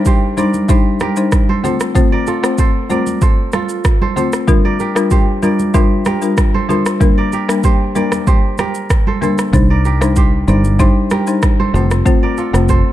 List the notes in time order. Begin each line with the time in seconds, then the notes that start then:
Already playing: A#4 D5
0.05 G4 C5, kick, shaker
0.37 G3 D4 D#4 A#4 C5 D5, high conga, shaker
0.54 high conga, shaker
0.69 G3 D4 D#4 G4 C5, kick, shaker
1.00 G4 A#4, cross-stick, high conga, shaker
1.16 G3 D4 D#4 C5, shaker
1.32 kick, cross-stick, shaker
1.49 A4 C5, high conga
1.64 A3 C4 F4 A4 C5, high conga, low conga, shaker
1.80 cross-stick, shaker
1.95 A3 C4 F4 C5, kick, low conga, shaker
2.12 A#4 D5
2.27 F4 A4, shaker
2.43 A3 C4 F4 C5, cross-stick, shaker
2.58 A4 C5, kick, shaker
2.90 A3 C4 F4 A#4 C5 D5, high conga, shaker
3.06 high conga, shaker
3.21 A4 C5, kick, shaker
3.52 F4 A4, cross-stick, high conga, shaker
3.69 shaker
3.84 kick, cross-stick, shaker
4.02 A4 C5, high conga
4.16 A3 C4 F4 A4 C5, high conga, low conga, shaker
4.33 cross-stick, shaker
4.48 G3 D4 F4 A#4, kick, low conga, shaker
4.65 A#4 D5
4.80 G4 A#4, shaker
4.95 G3 D4 F4 A#4, cross-stick, shaker
5.11 G4 C5, kick, shaker
5.42 G3 D4 F4 A#4 D5, high conga, shaker
5.59 high conga, shaker
5.74 G3 D4 F4 G4 A#4 C5, kick, shaker
6.05 G4 A#4, cross-stick, high conga, shaker
6.22 G3 D4 F4 A#4, shaker
6.37 kick, cross-stick, shaker
6.54 A4 C5, high conga
6.69 G3 D4 F4 A4 A#4 C5, high conga, low conga, shaker
6.86 cross-stick, shaker
7.00 G3 A#3 D4 A#4, kick, low conga, shaker
7.18 A#4 D5
7.32 G4 A#4, shaker
7.48 G3 A#3 D4 A#4, cross-stick, shaker
7.63 G4 C5, kick, shaker
7.95 G3 A#3 D4 A#4 D5, high conga, shaker
8.12 cross-stick, high conga, shaker
8.27 G4 C5, kick, shaker
8.58 G4 A#4, cross-stick, high conga, shaker
8.75 shaker
8.90 kick, cross-stick, shaker
9.07 A4 C5, high conga
9.21 G3 A#3 D4 A4 A#4 C5, high conga, low conga, shaker
9.38 cross-stick, shaker
9.53 C2 G3 D4 D#4 C5, kick, low conga, shaker
9.70 A#4 D5
9.85 G4 A#4, shaker
10.01 G3 D4 D#4 C5, cross-stick, shaker
10.16 G4 C5, kick, shaker
10.48 G1 G3 D4 D#4 A#4 C5 D5, high conga, shaker
10.64 high conga, shaker
10.79 G3 D4 D#4 G4 C5, kick, shaker
11.10 G4 A#4, cross-stick, high conga, shaker
11.27 G3 D4 D#4 C5, shaker
11.42 kick, cross-stick, shaker
11.60 A4 C5, high conga
11.74 F1 A3 C4 F4 A4 C5, high conga, low conga, shaker
11.91 cross-stick, shaker
12.05 A3 C4 F4 C5, kick, low conga, shaker
12.23 A#4 D5
12.37 F4 A4, shaker
12.53 F1 A3 C4 F4 C5, cross-stick, shaker
12.69 A4 C5, kick, shaker